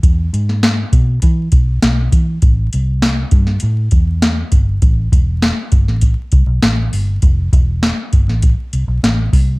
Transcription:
<<
  \new Staff \with { instrumentName = "Fingered electric bass" } { \clef bass \time 4/4 \key a \minor \tempo 4 = 100 e,8 gis,4 b,8 e8 b,,8 b,,8 e8 | a,,8 c,4 g,8 a,8 e,4 g,,8 | a,,8 e,,8. r16 g,,16 a,,8 r16 c,16 b,,16 a,,8 g,,8 | f,,8 e,,8. r16 g,,16 a,,8 r16 c,16 b,,16 a,,8 c,8 | }
  \new DrumStaff \with { instrumentName = "Drums" } \drummode { \time 4/4 <hh bd>8 hh16 sn16 <hh sn>8 <hh bd>8 <hh bd>8 <hh bd>8 <hh sn>8 <hh bd>8 | <hh bd>8 hh8 <hh sn>8 <hh bd>16 sn16 hh8 <hh bd>8 <hh sn>8 <hh bd>8 | <hh bd>8 <hh bd>8 <hh sn>8 <hh bd>16 sn16 <hh bd>8 <hh bd>8 <hh sn>8 hho8 | <hh bd>8 <hh bd>8 <hh sn>8 <hh bd>16 sn16 <hh bd>8 hh8 <hh sn>8 <hho bd>8 | }
>>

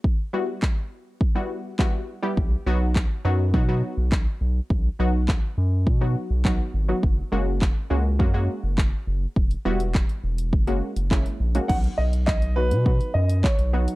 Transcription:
<<
  \new Staff \with { instrumentName = "Grand piano" } { \time 4/4 \key b \major \tempo 4 = 103 r1 | r1 | r1 | r1 |
r1 | fis''8 dis''8 dis''8 b'4 dis''8 cis''4 | }
  \new Staff \with { instrumentName = "Synth pluck" } { \time 4/4 \key b \major r8 <g b e' fis'>4~ <g b e' fis'>16 r8 <g b e' fis'>8 r16 <g b e' fis'>8 r16 <g b e' g'>16 | r8 <fis b dis' fis'>8. r16 <fis b dis' fis'>16 r16 <fis b dis' fis'>16 <fis b dis' fis'>4. r16 | r8 <fis b dis' fis'>4~ <fis b dis' fis'>16 r8 <fis b dis' fis'>8 r16 <fis b dis' fis'>8 r16 <fis b dis' fis'>16 | r8 <gis ais cis' fis'>8. r16 <gis ais cis' fis'>16 r16 <gis ais cis' fis'>16 <gis ais cis' fis'>4. r16 |
r8 <g b e' fis'>4~ <g b e' fis'>16 r8 <gis ais cis' fis'>8 r16 <gis ais cis' e'>8 r16 <gis ais cis' fis'>16 | <fis b dis' fis'>4 r8 <fis b dis' fis'>16 r16 <fis b dis' fis'>4 r8 <fis b dis' fis'>16 r16 | }
  \new Staff \with { instrumentName = "Analog synth bass" } { \clef bass \time 4/4 \key b \major r1 | b,,8 b,,4 fis,8 b,8. b,,8. b,,8 | b,,8 b,,4 fis,8 b,8. b,,8. gis,,8 | fis,,8 fis,,4 cis,8 fis,8. fis,,8. fis,,8 |
e,,8 e,,4 e,,8 fis,,8. fis,,8. ais,,8 | b,,8 b,,4~ b,,16 b,8. fis,8. b,,8. | }
  \new DrumStaff \with { instrumentName = "Drums" } \drummode { \time 4/4 bd4 <hc bd>4 bd4 <hc bd>4 | bd4 <hc bd>4 bd4 <hc bd>4 | bd4 <hc bd>4 bd4 <hc bd>4 | bd4 <hc bd>4 bd4 <hc bd>4 |
bd16 hh8 hh16 <hc bd>16 hh8 hh16 bd16 hh8 hh16 <hc bd>16 hh8 hh16 | <cymc bd>16 hh8 hh16 <hc bd>16 hh8 hh16 bd16 hh8 hh16 <hc bd>16 hh8 hh16 | }
>>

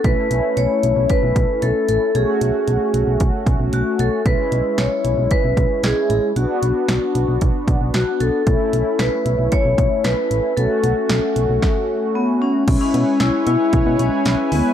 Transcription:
<<
  \new Staff \with { instrumentName = "Analog synth pad" } { \time 4/4 \key cis \phrygian \tempo 4 = 114 r1 | r1 | r1 | r1 |
r1 | r1 | <e' b' cis'' gis''>1 | }
  \new Staff \with { instrumentName = "Vibraphone" } { \time 4/4 \key cis \phrygian b'4 cis''4 b'4 a'8 a'8 | gis'2 r4 fis'8 a'8 | b'4 cis''4 b'4 gis'8 gis'8 | fis'2 r4 fis'8 a'8~ |
a'4 b'4 cis''4 b'4 | a'2. b8 cis'8~ | cis'16 cis'8. e'8 e'4 cis'4 b8 | }
  \new Staff \with { instrumentName = "Analog polysynth" } { \time 4/4 \key cis \phrygian <a cis' e'>1 | <a cis' fis'>1 | <gis cis' e'>1 | <b d' fis'>1 |
<a cis' e'>1 | <a cis' fis'>1 | <gis cis' e'>1 | }
  \new Staff \with { instrumentName = "FM bass" } { \clef bass \time 4/4 \key cis \phrygian b,,16 r16 b,,16 r16 b,,16 r16 b,,16 b,,16 r16 b,,16 b,,16 r16 b,,16 r16 a,,16 r16 | b,,16 r16 b,,16 r16 b,,16 r16 b,,16 b,,16 b,,16 r16 b,,16 b,,16 b,,16 r16 b,,16 r16 | b,,16 r16 b,,16 r16 b,,16 r16 b,,16 b,,16 r16 b,,16 b,,16 r16 b,,16 r16 a,,16 r16 | b,,16 r16 b,,16 r16 b,,16 r16 b,,16 b,,16 b,,16 r16 b,,16 b,,16 b,,16 r16 b,,16 r16 |
b,,16 r16 b,,16 r16 b,,16 r16 b,,16 b,,16 r16 b,,16 b,,16 r16 b,,16 r16 a,,16 r16 | b,,16 r16 b,,16 r16 b,,16 r16 b,,16 b,,16 r2 | b,,16 r16 b,16 r16 b,,16 r16 b,16 r16 b,,16 b,16 b,,16 r16 b,,16 r16 d,16 r16 | }
  \new DrumStaff \with { instrumentName = "Drums" } \drummode { \time 4/4 <hh bd>8 hh8 hh8 hh8 <hh bd>8 <hh bd>8 hh8 hh8 | hh8 hh8 hh8 hh8 <hh bd>8 <hh bd>8 hh8 hh8 | <hh bd>8 hh8 <hh sn>8 hh8 <hh bd>8 <hh bd>8 <hh sn>8 hh8 | hh8 hh8 <hh sn>8 hh8 <hh bd>8 <hh bd>8 <hh sn>8 hh8 |
<hh bd>8 hh8 <hh sn>8 hh8 <hh bd>8 <hh bd>8 <hh sn>8 hh8 | hh8 hh8 <hh sn>8 hh8 <bd sn>4 r4 | <cymc hh bd>8 hh8 <hh sn>8 hh8 <hh bd>8 hh8 <hh sn>8 hho8 | }
>>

